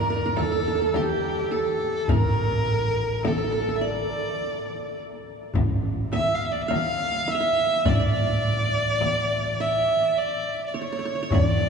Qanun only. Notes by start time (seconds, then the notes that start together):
Already playing: D5
0.01 A#4
0.10 A#4
0.16 A#4
0.26 A#4
0.38 A4
0.43 A4
0.52 A4
0.60 A4
0.68 A4
0.75 A4
0.82 A4
0.96 G4
1.51 A4
2.09 A#4
3.25 A4
3.32 A4
3.38 A4
3.44 A4
3.52 A4
3.60 A4
3.69 A4
3.81 D5
6.13 E5
6.68 F5
7.28 E5
7.35 F5
7.40 E5
7.85 D5
7.99 D5
9.60 E5
10.74 C#5
10.82 C#5
10.92 C#5
10.99 C#5
11.05 C#5
11.15 C#5
11.23 C#5
11.34 D5